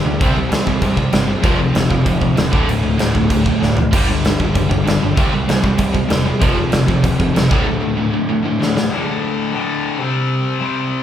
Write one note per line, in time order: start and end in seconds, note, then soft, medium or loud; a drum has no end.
0.00 0.18 G2 medium
0.00 0.19 D3 medium
0.00 0.19 G3 medium
0.05 0.15 D2 loud
0.05 0.19 G2 medium
0.05 0.19 D3 medium
0.19 0.31 C2 loud
0.19 0.33 C3 medium
0.19 0.33 G3 medium
0.19 0.35 C4 loud
0.19 kick loud
0.19 crash medium
0.34 0.47 C2 medium
0.34 0.48 C3 medium
0.34 0.48 G3 medium
0.38 0.51 G3 medium
0.49 0.62 C2 medium
0.49 0.64 C3 medium
0.49 0.64 G3 medium
0.49 snare loud
0.49 crash medium
0.65 0.78 C2 medium
0.65 0.81 C3 medium
0.65 0.81 G3 medium
0.65 1.11 C4 medium
0.65 kick medium
0.82 1.03 C2 medium
0.82 0.95 C3 medium
0.82 0.96 G3 medium
0.82 kick medium
0.82 crash medium
0.96 1.11 C3 medium
0.96 1.11 G3 medium
0.96 kick medium
1.12 1.34 G1 medium
1.12 1.26 C3 medium
1.12 1.26 G3 medium
1.12 1.44 C4 medium
1.12 snare loud
1.12 crash medium
1.27 1.41 C3 medium
1.27 1.42 G3 medium
1.42 1.65 F1 loud
1.42 1.57 F2 medium
1.42 1.57 C3 loud
1.42 1.58 F3 loud
1.42 kick loud
1.42 crash medium
1.58 1.71 F2 medium
1.58 1.72 C3 medium
1.73 1.86 F1 medium
1.73 1.88 F2 medium
1.73 1.88 C3 medium
1.73 snare loud
1.73 crash medium
1.88 2.01 F1 medium
1.88 2.04 F2 medium
1.88 2.05 C3 medium
1.88 2.35 F3 medium
1.88 kick medium
2.05 2.17 F1 medium
2.05 2.20 F2 medium
2.05 2.20 C3 medium
2.05 kick loud
2.05 crash medium
2.21 2.32 F1 medium
2.21 2.35 F2 medium
2.21 2.35 C3 medium
2.21 kick medium
2.36 2.48 E1 medium
2.36 2.51 F2 medium
2.36 2.51 C3 medium
2.36 2.52 F3 medium
2.36 snare loud
2.36 crash medium
2.52 2.64 D1 medium
2.52 2.66 D2 medium
2.52 2.66 A2 loud
2.52 2.67 D3 loud
2.52 kick loud
2.67 2.78 D1 loud
2.67 2.82 D2 medium
2.67 2.82 A2 medium
2.67 crash medium
2.84 2.94 D1 medium
2.84 2.98 D2 medium
2.84 2.97 A2 medium
2.99 3.10 D1 medium
2.99 3.13 D2 medium
2.99 3.13 A2 loud
2.99 3.44 D3 medium
2.99 snare loud
2.99 crash medium
3.15 3.26 D1 medium
3.15 3.29 D2 medium
3.15 3.29 A2 medium
3.15 kick medium
3.30 3.52 D1 medium
3.30 3.44 D2 medium
3.30 3.45 A2 medium
3.30 kick loud
3.30 crash medium
3.45 3.60 D2 medium
3.45 3.60 A2 medium
3.45 3.76 D3 medium
3.45 kick medium
3.62 3.83 D1 loud
3.62 3.76 D2 medium
3.62 3.76 A2 medium
3.62 snare medium
3.77 3.92 D2 medium
3.77 3.92 A2 medium
3.77 floor tom medium
3.93 4.14 G1 loud
3.93 4.08 G2 medium
3.93 4.08 D3 loud
3.93 4.08 G3 loud
3.93 kick loud
3.93 crash loud
4.10 4.23 G2 medium
4.10 4.23 D3 medium
4.24 4.35 G1 medium
4.24 4.38 G2 medium
4.24 4.39 D3 medium
4.24 snare loud
4.24 crash medium
4.39 4.51 G1 medium
4.39 4.53 G2 medium
4.39 4.54 D3 medium
4.39 4.85 G3 medium
4.39 kick medium
4.54 4.66 G1 medium
4.54 4.68 G2 medium
4.54 4.68 D3 loud
4.54 kick loud
4.54 crash medium
4.69 4.82 G1 medium
4.69 4.83 G2 medium
4.69 4.84 D3 medium
4.69 kick medium
4.84 4.98 G1 loud
4.84 4.99 G2 medium
4.84 4.99 D3 medium
4.84 5.15 G3 medium
4.84 crash medium
4.88 snare loud
5.01 5.13 G1 loud
5.01 5.15 G2 medium
5.01 5.15 D3 medium
5.15 5.28 C2 loud
5.15 5.31 C3 medium
5.15 5.31 G3 medium
5.15 5.31 C4 loud
5.15 kick loud
5.15 crash medium
5.32 5.44 C2 medium
5.32 5.46 C3 medium
5.32 5.47 G3 medium
5.48 5.59 C2 medium
5.48 5.61 C3 medium
5.48 5.61 G3 medium
5.48 snare loud
5.48 crash medium
5.62 5.74 C2 medium
5.62 5.76 C3 medium
5.62 5.77 G3 loud
5.62 6.09 C4 medium
5.62 kick medium
5.77 6.00 C2 medium
5.77 5.91 C3 medium
5.77 5.91 G3 loud
5.77 kick loud
5.77 crash medium
5.92 6.07 C3 medium
5.92 6.07 G3 medium
5.92 kick medium
6.08 6.31 E1 medium
6.08 6.23 C3 medium
6.08 6.24 G3 medium
6.08 snare loud
6.08 crash medium
6.13 6.42 C4 medium
6.25 6.39 C3 medium
6.25 6.40 G3 medium
6.39 6.63 F1 loud
6.39 6.53 F2 loud
6.39 6.54 C3 loud
6.39 6.56 F3 loud
6.39 kick loud
6.39 crash medium
6.54 6.69 F2 medium
6.54 6.69 C3 medium
6.70 6.83 F1 loud
6.70 6.85 F2 medium
6.70 6.85 C3 medium
6.70 snare loud
6.70 crash medium
6.86 6.99 F1 medium
6.86 7.01 F2 medium
6.86 7.01 C3 medium
6.86 7.36 F3 medium
6.86 kick medium
7.02 7.15 F1 loud
7.02 7.17 F2 medium
7.02 7.17 C3 medium
7.02 kick loud
7.02 crash medium
7.18 7.30 F1 medium
7.18 7.32 F2 medium
7.18 7.32 C3 medium
7.18 kick medium
7.33 7.46 F1 loud
7.33 7.48 F2 medium
7.33 7.48 C3 medium
7.33 7.51 F3 medium
7.33 snare loud
7.33 crash medium
7.49 7.62 D1 loud
7.49 7.64 D2 medium
7.49 7.64 A2 loud
7.49 7.66 D3 loud
7.49 kick loud
7.65 7.79 D2 medium
7.65 7.80 A2 medium
7.80 7.95 D2 medium
7.80 7.96 A2 medium
7.96 8.10 D2 medium
7.96 8.10 A2 medium
7.96 8.43 D3 medium
8.11 8.26 D2 medium
8.11 8.26 A2 medium
8.29 8.42 D2 medium
8.29 8.42 A2 loud
8.43 8.57 D2 medium
8.43 8.58 A2 medium
8.43 8.74 D3 medium
8.60 8.74 D2 medium
8.60 8.74 A2 medium
8.60 snare medium
8.77 8.89 D2 medium
8.77 8.90 A2 medium
8.77 snare loud
8.90 9.51 D2 loud
8.90 9.52 A2 loud
8.90 9.53 D3 loud
9.52 9.98 D2 medium
9.52 9.99 A2 medium
9.52 10.00 D3 loud
9.98 10.60 C3 medium
9.98 10.60 G3 loud
9.98 10.58 C4 loud
10.59 11.03 C3 medium
10.59 11.03 G3 medium
10.59 11.03 C4 loud